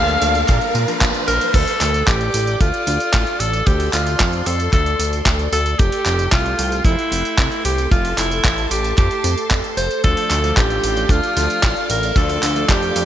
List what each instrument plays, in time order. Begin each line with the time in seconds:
Already playing: analog synth bass D2, electric grand piano F3 A#3 D4 F4, string machine A#4 D5 F5 D6, alto saxophone F5, riser
0.08 closed hi-hat, tambourine
0.22 analog synth bass D2, closed hi-hat, tambourine
0.35 closed hi-hat, tambourine
0.48 analog synth bass A#2, kick, clap, closed hi-hat, tambourine
0.61 closed hi-hat, tambourine
0.75 analog synth bass A#2, tambourine
0.88 electric grand piano F3 A#3 D4 F4, closed hi-hat, tambourine
1.01 analog synth bass A#1, kick, clap, closed hi-hat, tambourine
1.14 closed hi-hat, tambourine
1.28 analog synth bass A#1, alto saxophone A#4, closed hi-hat, tambourine
1.41 closed hi-hat, tambourine
1.54 analog synth bass D2, string machine A4 D5 D6, alto saxophone A4, kick, closed hi-hat, crash, tambourine
1.68 open hi-hat, tambourine
1.81 analog synth bass D2, clap, open hi-hat, tambourine
1.94 closed hi-hat, tambourine
2.07 analog synth bass A1, alto saxophone G4, kick, clap, closed hi-hat, tambourine
2.21 closed hi-hat, tambourine
2.34 analog synth bass A1, open hi-hat, tambourine
2.47 closed hi-hat, tambourine
2.60 analog synth bass D2, alto saxophone F4, kick, closed hi-hat, tambourine
2.74 closed hi-hat, tambourine
2.87 analog synth bass D2, open hi-hat, tambourine
3.00 closed hi-hat, tambourine
3.13 analog synth bass A1, kick, clap, closed hi-hat, tambourine
3.27 closed hi-hat, tambourine
3.40 analog synth bass A1, alto saxophone A4, open hi-hat, tambourine
3.53 closed hi-hat, tambourine
3.66 analog synth bass D2, alto saxophone G4, string machine C6, kick, closed hi-hat, tambourine
3.80 open hi-hat, tambourine
3.93 analog synth bass D2, alto saxophone F4, clap, open hi-hat, tambourine
4.07 closed hi-hat, tambourine
4.20 analog synth bass F2, kick, clap, closed hi-hat, tambourine
4.33 closed hi-hat, tambourine
4.46 analog synth bass F2, alto saxophone A4, open hi-hat, tambourine
4.60 closed hi-hat, tambourine
4.73 analog synth bass D2, alto saxophone A4, kick, clap, closed hi-hat, tambourine
4.86 closed hi-hat, tambourine
4.99 analog synth bass D2, open hi-hat, tambourine
5.13 closed hi-hat, tambourine
5.26 analog synth bass D2, kick, clap, closed hi-hat, tambourine
5.39 closed hi-hat, tambourine
5.52 analog synth bass D2, alto saxophone A4, open hi-hat, tambourine
5.66 closed hi-hat, tambourine
5.79 analog synth bass F1, alto saxophone G4, string machine G5 C6, kick, closed hi-hat, tambourine
5.92 open hi-hat, tambourine
6.06 analog synth bass F1, clap, open hi-hat, tambourine
6.19 closed hi-hat, tambourine
6.32 analog synth bass C2, alto saxophone F4, kick, clap, closed hi-hat, tambourine
6.46 closed hi-hat, tambourine
6.59 analog synth bass C2, open hi-hat, tambourine
6.72 closed hi-hat, tambourine
6.85 analog synth bass F1, alto saxophone E4, kick, closed hi-hat, tambourine
6.99 closed hi-hat, tambourine
7.12 analog synth bass F1, open hi-hat, tambourine
7.25 closed hi-hat, tambourine
7.38 analog synth bass C2, kick, clap, closed hi-hat, tambourine
7.52 closed hi-hat, tambourine
7.65 analog synth bass C2, alto saxophone G4, open hi-hat, tambourine
7.78 closed hi-hat, tambourine
7.91 analog synth bass F1, alto saxophone F4, string machine A5, kick, closed hi-hat, tambourine
8.05 open hi-hat, tambourine
8.18 analog synth bass F1, alto saxophone E4, clap, open hi-hat, tambourine
8.31 closed hi-hat, tambourine
8.45 analog synth bass A1, kick, clap, closed hi-hat, tambourine
8.58 closed hi-hat, tambourine
8.71 analog synth bass A1, alto saxophone G4, open hi-hat, tambourine
8.84 closed hi-hat, tambourine
8.98 analog synth bass F2, alto saxophone G4, kick, clap, closed hi-hat, tambourine
9.11 closed hi-hat, tambourine
9.24 analog synth bass F2, open hi-hat, tambourine
9.38 closed hi-hat, tambourine
9.51 analog synth bass F1, kick, clap, closed hi-hat, tambourine
9.64 closed hi-hat, tambourine
9.77 analog synth bass F1, alto saxophone C5, open hi-hat, tambourine
9.91 closed hi-hat, tambourine
10.04 analog synth bass D2, electric grand piano F3 A3 D4 F4, alto saxophone A4, string machine D5 F5 D6, kick, closed hi-hat, tambourine
10.17 open hi-hat, tambourine
10.30 analog synth bass D2, clap, open hi-hat, tambourine
10.44 electric grand piano F3 A3 D4 F4, closed hi-hat, tambourine
10.57 analog synth bass A1, alto saxophone G4, kick, clap, closed hi-hat, tambourine
10.70 closed hi-hat, tambourine
10.84 analog synth bass A1, open hi-hat, tambourine
10.97 closed hi-hat, tambourine
11.09 analog synth bass D2, alto saxophone F4, kick, closed hi-hat, tambourine
11.23 closed hi-hat, tambourine
11.37 analog synth bass D2, electric grand piano F3 A3 D4 F4, open hi-hat, tambourine
11.50 closed hi-hat, tambourine
11.63 analog synth bass A1, kick, clap, closed hi-hat, tambourine
11.76 closed hi-hat, tambourine
11.90 analog synth bass A1, alto saxophone A#4, open hi-hat, tambourine
12.03 closed hi-hat, tambourine
12.16 analog synth bass D2, electric grand piano F3 A3 D4 F4, alto saxophone A4, kick, closed hi-hat, tambourine
12.29 open hi-hat, tambourine
12.43 analog synth bass D2, clap, open hi-hat, tambourine
12.56 electric grand piano F3 A3 D4 F4, closed hi-hat, tambourine
12.69 analog synth bass F2, alto saxophone G4, kick, clap, closed hi-hat, tambourine
12.83 closed hi-hat, tambourine
12.96 analog synth bass F2, open hi-hat, tambourine